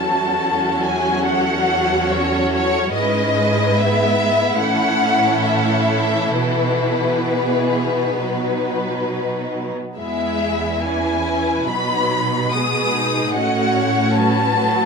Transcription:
Already playing: cello section E2, viola section F#3 C#4, violin section F#4 A4 A5
0.85 violin section G#5
1.26 violin section F#5
2.10 violin section C#5
2.53 violin section C#5
2.93 cello section G#2, viola section G#3, violin section E4 B4 D#5
3.77 viola section B3, violin section E5
4.59 cello section A2, viola section E3 C#4, violin section A4 F#5
5.46 violin section E5
5.55 violin section F#5
5.64 violin section E5
5.72 violin section F#5
5.81 violin section E5
5.89 violin section F#5
5.97 violin section E5
6.35 cello section B2, viola section B3, violin section B4
7.28 violin section G#4
8.18 viola section F#3, violin section D#4 B4
9.97 cello section E2, viola section G#3 B3, violin section E4 G#4 E5
10.84 viola section E3 C#4, violin section E4 B4 G#5
11.27 viola section E3
11.68 cello section B2, viola section F#3 B3, violin section D#4 B5
12.51 viola section G#3 B3, violin section G#4 B4 D#6
12.93 viola section D#4
13.35 cello section A2, viola section A3 C#4, violin section F#4 D#5 F#5
13.75 violin section C#5
14.16 viola section F#3, violin section F#4 B4 A5
14.58 viola section F#3

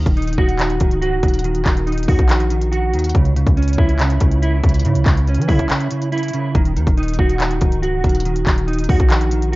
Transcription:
Already playing: clean electric guitar D#3
0.06 808-style bass D#1, kick, closed hi-hat
0.17 clean electric guitar D#4, closed hi-hat
0.22 closed hi-hat
0.27 closed hi-hat
0.33 closed hi-hat
0.38 808-style bass D#1, clean electric guitar F#4, kick
0.49 closed hi-hat
0.59 clean electric guitar D#3, clap, closed hi-hat
0.70 closed hi-hat
0.80 808-style bass C#1, clean electric guitar D#3, kick, closed hi-hat
0.91 closed hi-hat
1.02 clean electric guitar F#4, closed hi-hat
1.23 808-style bass D#1, clean electric guitar D#3, kick, closed hi-hat
1.28 closed hi-hat
1.34 closed hi-hat
1.39 closed hi-hat
1.44 clean electric guitar D#3, closed hi-hat
1.55 closed hi-hat
1.66 808-style bass D#1, clean electric guitar D#3, kick, clap, closed hi-hat
1.77 closed hi-hat
1.87 clean electric guitar D#4, closed hi-hat
1.92 closed hi-hat
1.98 closed hi-hat
2.03 closed hi-hat
2.08 808-style bass D#2, clean electric guitar F#4, kick, open hi-hat
2.19 808-style bass A#1, kick, closed hi-hat
2.29 clean electric guitar D#3, clap, closed hi-hat
2.40 closed hi-hat
2.50 clean electric guitar D#3, closed hi-hat
2.61 closed hi-hat
2.72 clean electric guitar F#4, closed hi-hat
2.93 808-style bass D#2, clean electric guitar D#3, closed hi-hat
2.99 closed hi-hat
3.04 closed hi-hat
3.09 closed hi-hat
3.15 808-style bass C#2, clean electric guitar C#3, kick, closed hi-hat
3.25 closed hi-hat
3.36 clean electric guitar C#3, closed hi-hat
3.47 808-style bass C#2, kick, closed hi-hat
3.57 clean electric guitar C#4, closed hi-hat
3.63 closed hi-hat
3.68 closed hi-hat
3.73 closed hi-hat
3.78 808-style bass C#2, clean electric guitar E4, kick
3.89 closed hi-hat
3.99 clean electric guitar C#3, clap, closed hi-hat
4.10 closed hi-hat
4.21 808-style bass C#2, clean electric guitar C#3, kick, closed hi-hat
4.32 closed hi-hat
4.42 clean electric guitar E4, closed hi-hat
4.63 808-style bass C#2, clean electric guitar C#3, kick, closed hi-hat
4.69 closed hi-hat
4.74 closed hi-hat
4.79 closed hi-hat
4.85 808-style bass G#2, clean electric guitar C#3, closed hi-hat
4.95 808-style bass C#2, closed hi-hat
5.06 808-style bass C#2, clean electric guitar C#3, kick, clap, closed hi-hat
5.17 closed hi-hat
5.27 clean electric guitar C#4, closed hi-hat
5.34 808-style bass E3, closed hi-hat
5.42 closed hi-hat
5.48 808-style bass C#3, clean electric guitar E4, kick, open hi-hat
5.59 808-style bass B1, kick, closed hi-hat
5.70 clean electric guitar C#3, clap, closed hi-hat
5.81 closed hi-hat
5.91 clean electric guitar C#3, closed hi-hat
6.02 closed hi-hat
6.12 clean electric guitar E4, closed hi-hat
6.18 closed hi-hat
6.23 closed hi-hat
6.28 closed hi-hat
6.34 clean electric guitar C#3, closed hi-hat
6.55 808-style bass D#1, clean electric guitar D#3, kick, closed hi-hat
6.66 closed hi-hat
6.76 808-style bass D#2, clean electric guitar D#3, closed hi-hat
6.87 808-style bass D#1, kick, closed hi-hat
6.98 clean electric guitar D#4, closed hi-hat
7.03 closed hi-hat
7.08 closed hi-hat
7.14 closed hi-hat
7.19 808-style bass D#1, clean electric guitar F#4, kick
7.29 closed hi-hat
7.40 clean electric guitar D#3, clap, closed hi-hat
7.51 closed hi-hat
7.61 808-style bass C#1, clean electric guitar D#3, kick, closed hi-hat
7.72 closed hi-hat
7.82 clean electric guitar F#4, closed hi-hat
8.04 808-style bass D#1, clean electric guitar D#3, kick, closed hi-hat
8.09 closed hi-hat
8.15 closed hi-hat
8.20 closed hi-hat
8.25 clean electric guitar D#3, closed hi-hat
8.36 closed hi-hat
8.47 808-style bass D#1, clean electric guitar D#3, kick, clap, closed hi-hat
8.58 closed hi-hat
8.67 clean electric guitar D#4, closed hi-hat
8.73 closed hi-hat
8.79 closed hi-hat
8.84 closed hi-hat
8.89 808-style bass D#2, clean electric guitar F#4, kick, open hi-hat
9.00 808-style bass A#1, kick, closed hi-hat
9.10 clean electric guitar D#3, clap, closed hi-hat
9.21 closed hi-hat
9.31 clean electric guitar D#3, closed hi-hat
9.42 closed hi-hat
9.52 clean electric guitar F#4

